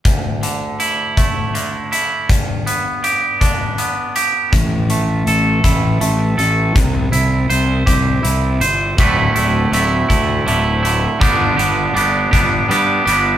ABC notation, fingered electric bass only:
X:1
M:6/8
L:1/8
Q:3/8=54
K:G
V:1 name="Fingered electric bass" clef=bass
z6 | z6 | A,,,2 A,,, A,,, A,,, A,,, | C,, C,, C,, C,, C,, G,,, |
D,,, D,,, D,,, D,, D,,,2 | G,,, G,,, G,,, G,,, G,, G,,, |]